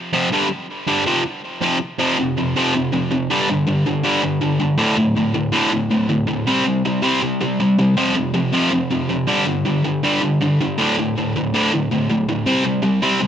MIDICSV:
0, 0, Header, 1, 2, 480
1, 0, Start_track
1, 0, Tempo, 373599
1, 645, Time_signature, 4, 2, 24, 8
1, 17052, End_track
2, 0, Start_track
2, 0, Title_t, "Distorted electric guitar"
2, 0, Program_c, 0, 30
2, 167, Note_on_c, 0, 41, 97
2, 172, Note_on_c, 0, 48, 96
2, 173, Note_on_c, 0, 53, 102
2, 359, Note_off_c, 0, 41, 0
2, 361, Note_off_c, 0, 48, 0
2, 361, Note_off_c, 0, 53, 0
2, 418, Note_on_c, 0, 43, 93
2, 423, Note_on_c, 0, 50, 93
2, 428, Note_on_c, 0, 55, 100
2, 604, Note_off_c, 0, 43, 0
2, 606, Note_off_c, 0, 50, 0
2, 609, Note_off_c, 0, 55, 0
2, 1120, Note_on_c, 0, 43, 92
2, 1129, Note_on_c, 0, 50, 106
2, 1138, Note_on_c, 0, 55, 97
2, 1314, Note_off_c, 0, 43, 0
2, 1318, Note_off_c, 0, 50, 0
2, 1323, Note_off_c, 0, 55, 0
2, 1366, Note_on_c, 0, 41, 96
2, 1369, Note_on_c, 0, 48, 106
2, 1377, Note_on_c, 0, 53, 96
2, 1557, Note_off_c, 0, 41, 0
2, 1558, Note_off_c, 0, 48, 0
2, 1562, Note_off_c, 0, 53, 0
2, 2073, Note_on_c, 0, 41, 82
2, 2086, Note_on_c, 0, 48, 93
2, 2088, Note_on_c, 0, 53, 100
2, 2270, Note_off_c, 0, 41, 0
2, 2276, Note_off_c, 0, 48, 0
2, 2277, Note_off_c, 0, 53, 0
2, 2554, Note_on_c, 0, 41, 88
2, 2560, Note_on_c, 0, 48, 92
2, 2563, Note_on_c, 0, 53, 99
2, 2783, Note_off_c, 0, 41, 0
2, 2786, Note_off_c, 0, 48, 0
2, 2788, Note_off_c, 0, 53, 0
2, 2820, Note_on_c, 0, 41, 69
2, 2825, Note_on_c, 0, 48, 78
2, 3026, Note_off_c, 0, 41, 0
2, 3029, Note_off_c, 0, 48, 0
2, 3054, Note_on_c, 0, 41, 73
2, 3055, Note_on_c, 0, 48, 80
2, 3263, Note_off_c, 0, 41, 0
2, 3264, Note_off_c, 0, 48, 0
2, 3290, Note_on_c, 0, 41, 97
2, 3295, Note_on_c, 0, 48, 97
2, 3302, Note_on_c, 0, 53, 110
2, 3511, Note_off_c, 0, 41, 0
2, 3513, Note_off_c, 0, 48, 0
2, 3517, Note_off_c, 0, 53, 0
2, 3536, Note_on_c, 0, 41, 74
2, 3543, Note_on_c, 0, 48, 86
2, 3744, Note_off_c, 0, 41, 0
2, 3747, Note_off_c, 0, 48, 0
2, 3758, Note_on_c, 0, 41, 81
2, 3766, Note_on_c, 0, 48, 78
2, 3975, Note_off_c, 0, 41, 0
2, 3979, Note_off_c, 0, 48, 0
2, 3993, Note_on_c, 0, 41, 76
2, 4001, Note_on_c, 0, 48, 88
2, 4212, Note_off_c, 0, 41, 0
2, 4216, Note_off_c, 0, 48, 0
2, 4243, Note_on_c, 0, 43, 95
2, 4245, Note_on_c, 0, 50, 93
2, 4252, Note_on_c, 0, 55, 101
2, 4467, Note_off_c, 0, 43, 0
2, 4468, Note_off_c, 0, 50, 0
2, 4471, Note_off_c, 0, 55, 0
2, 4491, Note_on_c, 0, 43, 76
2, 4494, Note_on_c, 0, 50, 83
2, 4696, Note_off_c, 0, 43, 0
2, 4702, Note_off_c, 0, 50, 0
2, 4711, Note_on_c, 0, 43, 71
2, 4718, Note_on_c, 0, 50, 77
2, 4931, Note_off_c, 0, 43, 0
2, 4934, Note_off_c, 0, 50, 0
2, 4959, Note_on_c, 0, 43, 78
2, 4960, Note_on_c, 0, 50, 87
2, 5168, Note_off_c, 0, 43, 0
2, 5175, Note_off_c, 0, 50, 0
2, 5184, Note_on_c, 0, 43, 98
2, 5190, Note_on_c, 0, 50, 107
2, 5193, Note_on_c, 0, 55, 102
2, 5417, Note_off_c, 0, 43, 0
2, 5419, Note_off_c, 0, 50, 0
2, 5421, Note_off_c, 0, 55, 0
2, 5433, Note_on_c, 0, 43, 75
2, 5435, Note_on_c, 0, 50, 89
2, 5650, Note_off_c, 0, 50, 0
2, 5652, Note_off_c, 0, 43, 0
2, 5665, Note_on_c, 0, 50, 84
2, 5669, Note_on_c, 0, 43, 68
2, 5887, Note_off_c, 0, 50, 0
2, 5890, Note_off_c, 0, 43, 0
2, 5905, Note_on_c, 0, 43, 79
2, 5909, Note_on_c, 0, 50, 81
2, 6128, Note_off_c, 0, 43, 0
2, 6130, Note_off_c, 0, 50, 0
2, 6137, Note_on_c, 0, 38, 99
2, 6144, Note_on_c, 0, 50, 94
2, 6149, Note_on_c, 0, 45, 102
2, 6363, Note_off_c, 0, 38, 0
2, 6374, Note_off_c, 0, 45, 0
2, 6376, Note_off_c, 0, 50, 0
2, 6378, Note_on_c, 0, 38, 82
2, 6389, Note_on_c, 0, 45, 89
2, 6604, Note_off_c, 0, 38, 0
2, 6610, Note_off_c, 0, 45, 0
2, 6636, Note_on_c, 0, 38, 65
2, 6646, Note_on_c, 0, 45, 77
2, 6848, Note_off_c, 0, 45, 0
2, 6853, Note_off_c, 0, 38, 0
2, 6863, Note_on_c, 0, 45, 82
2, 6866, Note_on_c, 0, 38, 78
2, 7077, Note_off_c, 0, 38, 0
2, 7078, Note_off_c, 0, 45, 0
2, 7092, Note_on_c, 0, 38, 101
2, 7094, Note_on_c, 0, 45, 101
2, 7107, Note_on_c, 0, 50, 108
2, 7312, Note_off_c, 0, 38, 0
2, 7327, Note_off_c, 0, 45, 0
2, 7328, Note_on_c, 0, 38, 82
2, 7338, Note_off_c, 0, 50, 0
2, 7342, Note_on_c, 0, 45, 85
2, 7559, Note_off_c, 0, 38, 0
2, 7566, Note_off_c, 0, 45, 0
2, 7589, Note_on_c, 0, 38, 80
2, 7590, Note_on_c, 0, 45, 82
2, 7810, Note_off_c, 0, 38, 0
2, 7810, Note_off_c, 0, 45, 0
2, 7824, Note_on_c, 0, 38, 87
2, 7833, Note_on_c, 0, 45, 86
2, 8042, Note_off_c, 0, 38, 0
2, 8052, Note_off_c, 0, 45, 0
2, 8058, Note_on_c, 0, 38, 75
2, 8071, Note_on_c, 0, 45, 86
2, 8284, Note_off_c, 0, 38, 0
2, 8291, Note_off_c, 0, 45, 0
2, 8315, Note_on_c, 0, 48, 98
2, 8317, Note_on_c, 0, 55, 101
2, 8320, Note_on_c, 0, 60, 102
2, 8530, Note_off_c, 0, 48, 0
2, 8535, Note_off_c, 0, 55, 0
2, 8545, Note_off_c, 0, 60, 0
2, 8546, Note_on_c, 0, 48, 74
2, 8550, Note_on_c, 0, 55, 78
2, 8769, Note_off_c, 0, 48, 0
2, 8771, Note_off_c, 0, 55, 0
2, 8806, Note_on_c, 0, 55, 89
2, 8807, Note_on_c, 0, 48, 73
2, 9007, Note_off_c, 0, 48, 0
2, 9019, Note_off_c, 0, 55, 0
2, 9023, Note_on_c, 0, 48, 97
2, 9034, Note_on_c, 0, 55, 105
2, 9044, Note_on_c, 0, 60, 105
2, 9257, Note_off_c, 0, 48, 0
2, 9263, Note_off_c, 0, 55, 0
2, 9268, Note_off_c, 0, 60, 0
2, 9277, Note_on_c, 0, 48, 84
2, 9284, Note_on_c, 0, 55, 91
2, 9495, Note_off_c, 0, 48, 0
2, 9498, Note_off_c, 0, 55, 0
2, 9518, Note_on_c, 0, 48, 75
2, 9525, Note_on_c, 0, 55, 76
2, 9735, Note_off_c, 0, 48, 0
2, 9739, Note_off_c, 0, 55, 0
2, 9764, Note_on_c, 0, 55, 91
2, 9767, Note_on_c, 0, 48, 78
2, 9978, Note_off_c, 0, 55, 0
2, 9980, Note_off_c, 0, 48, 0
2, 10003, Note_on_c, 0, 48, 76
2, 10011, Note_on_c, 0, 55, 79
2, 10218, Note_off_c, 0, 48, 0
2, 10222, Note_off_c, 0, 55, 0
2, 10237, Note_on_c, 0, 48, 104
2, 10238, Note_on_c, 0, 41, 90
2, 10251, Note_on_c, 0, 53, 109
2, 10456, Note_off_c, 0, 41, 0
2, 10457, Note_off_c, 0, 48, 0
2, 10472, Note_off_c, 0, 53, 0
2, 10472, Note_on_c, 0, 41, 76
2, 10472, Note_on_c, 0, 48, 80
2, 10693, Note_off_c, 0, 41, 0
2, 10693, Note_off_c, 0, 48, 0
2, 10711, Note_on_c, 0, 41, 70
2, 10714, Note_on_c, 0, 48, 89
2, 10933, Note_off_c, 0, 41, 0
2, 10934, Note_off_c, 0, 48, 0
2, 10952, Note_on_c, 0, 41, 91
2, 10957, Note_on_c, 0, 48, 100
2, 10966, Note_on_c, 0, 53, 103
2, 11175, Note_off_c, 0, 41, 0
2, 11182, Note_off_c, 0, 48, 0
2, 11190, Note_off_c, 0, 53, 0
2, 11191, Note_on_c, 0, 41, 76
2, 11197, Note_on_c, 0, 48, 93
2, 11413, Note_off_c, 0, 41, 0
2, 11416, Note_off_c, 0, 48, 0
2, 11441, Note_on_c, 0, 41, 81
2, 11446, Note_on_c, 0, 48, 86
2, 11658, Note_off_c, 0, 41, 0
2, 11661, Note_off_c, 0, 48, 0
2, 11683, Note_on_c, 0, 41, 74
2, 11692, Note_on_c, 0, 48, 100
2, 11899, Note_off_c, 0, 41, 0
2, 11904, Note_off_c, 0, 48, 0
2, 11914, Note_on_c, 0, 43, 89
2, 11924, Note_on_c, 0, 55, 99
2, 11929, Note_on_c, 0, 50, 90
2, 12137, Note_off_c, 0, 50, 0
2, 12138, Note_off_c, 0, 43, 0
2, 12150, Note_off_c, 0, 55, 0
2, 12152, Note_on_c, 0, 50, 92
2, 12153, Note_on_c, 0, 43, 84
2, 12374, Note_off_c, 0, 50, 0
2, 12375, Note_off_c, 0, 43, 0
2, 12406, Note_on_c, 0, 43, 77
2, 12414, Note_on_c, 0, 50, 74
2, 12621, Note_off_c, 0, 43, 0
2, 12625, Note_off_c, 0, 50, 0
2, 12649, Note_on_c, 0, 43, 74
2, 12653, Note_on_c, 0, 50, 86
2, 12863, Note_off_c, 0, 43, 0
2, 12865, Note_off_c, 0, 50, 0
2, 12894, Note_on_c, 0, 43, 98
2, 12903, Note_on_c, 0, 50, 104
2, 12903, Note_on_c, 0, 55, 101
2, 13115, Note_off_c, 0, 43, 0
2, 13119, Note_off_c, 0, 50, 0
2, 13120, Note_off_c, 0, 55, 0
2, 13132, Note_on_c, 0, 43, 79
2, 13136, Note_on_c, 0, 50, 85
2, 13344, Note_off_c, 0, 43, 0
2, 13347, Note_off_c, 0, 50, 0
2, 13380, Note_on_c, 0, 43, 78
2, 13391, Note_on_c, 0, 50, 91
2, 13589, Note_off_c, 0, 43, 0
2, 13594, Note_off_c, 0, 50, 0
2, 13629, Note_on_c, 0, 43, 82
2, 13632, Note_on_c, 0, 50, 90
2, 13833, Note_off_c, 0, 43, 0
2, 13835, Note_off_c, 0, 50, 0
2, 13847, Note_on_c, 0, 38, 97
2, 13855, Note_on_c, 0, 50, 111
2, 13857, Note_on_c, 0, 45, 92
2, 14072, Note_off_c, 0, 38, 0
2, 14076, Note_off_c, 0, 50, 0
2, 14077, Note_off_c, 0, 45, 0
2, 14113, Note_on_c, 0, 45, 95
2, 14114, Note_on_c, 0, 38, 83
2, 14315, Note_off_c, 0, 45, 0
2, 14316, Note_off_c, 0, 38, 0
2, 14359, Note_on_c, 0, 38, 67
2, 14365, Note_on_c, 0, 45, 79
2, 14558, Note_off_c, 0, 38, 0
2, 14562, Note_off_c, 0, 45, 0
2, 14593, Note_on_c, 0, 38, 80
2, 14600, Note_on_c, 0, 45, 89
2, 14796, Note_off_c, 0, 38, 0
2, 14799, Note_off_c, 0, 45, 0
2, 14825, Note_on_c, 0, 38, 99
2, 14830, Note_on_c, 0, 45, 98
2, 14839, Note_on_c, 0, 50, 105
2, 15041, Note_off_c, 0, 38, 0
2, 15044, Note_off_c, 0, 45, 0
2, 15048, Note_off_c, 0, 50, 0
2, 15057, Note_on_c, 0, 38, 86
2, 15071, Note_on_c, 0, 45, 91
2, 15268, Note_off_c, 0, 38, 0
2, 15275, Note_off_c, 0, 45, 0
2, 15304, Note_on_c, 0, 38, 80
2, 15305, Note_on_c, 0, 45, 84
2, 15511, Note_off_c, 0, 38, 0
2, 15512, Note_off_c, 0, 45, 0
2, 15541, Note_on_c, 0, 38, 85
2, 15548, Note_on_c, 0, 45, 94
2, 15750, Note_off_c, 0, 38, 0
2, 15753, Note_off_c, 0, 45, 0
2, 15784, Note_on_c, 0, 38, 75
2, 15787, Note_on_c, 0, 45, 89
2, 15991, Note_off_c, 0, 38, 0
2, 15993, Note_off_c, 0, 45, 0
2, 16011, Note_on_c, 0, 48, 96
2, 16017, Note_on_c, 0, 60, 114
2, 16021, Note_on_c, 0, 55, 102
2, 16234, Note_off_c, 0, 48, 0
2, 16237, Note_off_c, 0, 55, 0
2, 16237, Note_off_c, 0, 60, 0
2, 16251, Note_on_c, 0, 48, 72
2, 16252, Note_on_c, 0, 55, 77
2, 16462, Note_off_c, 0, 48, 0
2, 16465, Note_off_c, 0, 55, 0
2, 16477, Note_on_c, 0, 48, 83
2, 16485, Note_on_c, 0, 55, 80
2, 16698, Note_off_c, 0, 48, 0
2, 16702, Note_off_c, 0, 55, 0
2, 16732, Note_on_c, 0, 48, 103
2, 16735, Note_on_c, 0, 55, 106
2, 16740, Note_on_c, 0, 60, 110
2, 16955, Note_off_c, 0, 48, 0
2, 16956, Note_off_c, 0, 55, 0
2, 16959, Note_off_c, 0, 60, 0
2, 16971, Note_on_c, 0, 48, 81
2, 16976, Note_on_c, 0, 55, 92
2, 17052, Note_off_c, 0, 48, 0
2, 17052, Note_off_c, 0, 55, 0
2, 17052, End_track
0, 0, End_of_file